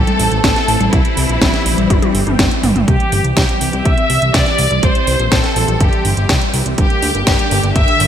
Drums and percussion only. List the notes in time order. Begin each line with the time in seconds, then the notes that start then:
0.07 closed hi-hat, high conga
0.19 open hi-hat
0.32 closed hi-hat
0.44 kick, snare, closed hi-hat
0.56 snare, closed hi-hat
0.68 open hi-hat
0.81 closed hi-hat, high conga
0.93 kick, closed hi-hat
1.05 closed hi-hat
1.17 open hi-hat
1.29 closed hi-hat
1.42 kick, snare, closed hi-hat
1.54 snare, closed hi-hat
1.66 open hi-hat
1.78 closed hi-hat, high conga
1.90 kick, closed hi-hat, high tom
2.02 closed hi-hat, high tom, high conga
2.15 open hi-hat
2.27 closed hi-hat, mid tom
2.39 kick, snare, closed hi-hat, mid tom
2.51 closed hi-hat
2.63 mid tom, open hi-hat
2.76 closed hi-hat, mid tom
2.88 kick, closed hi-hat
3.00 closed hi-hat
3.12 open hi-hat, high conga
3.24 closed hi-hat
3.37 kick, snare, closed hi-hat
3.49 closed hi-hat
3.61 open hi-hat
3.73 closed hi-hat, high conga
3.85 kick, closed hi-hat
3.98 closed hi-hat, high conga
4.10 open hi-hat
4.22 closed hi-hat
4.34 kick, snare, closed hi-hat
4.46 snare, closed hi-hat
4.58 open hi-hat
4.71 closed hi-hat, high conga
4.83 kick, closed hi-hat
4.95 closed hi-hat
5.07 open hi-hat
5.20 closed hi-hat
5.32 kick, snare, closed hi-hat
5.44 snare, closed hi-hat
5.56 open hi-hat
5.68 closed hi-hat, high conga
5.80 kick, closed hi-hat
5.93 closed hi-hat, high conga
6.05 open hi-hat
6.17 closed hi-hat
6.29 kick, snare, closed hi-hat
6.41 closed hi-hat
6.54 open hi-hat
6.66 closed hi-hat
6.78 kick, closed hi-hat
6.90 closed hi-hat
7.02 open hi-hat, high conga
7.15 closed hi-hat
7.27 kick, snare, closed hi-hat
7.39 closed hi-hat
7.51 open hi-hat
7.64 closed hi-hat, high conga
7.76 kick, closed hi-hat
7.88 closed hi-hat, high conga
8.00 open hi-hat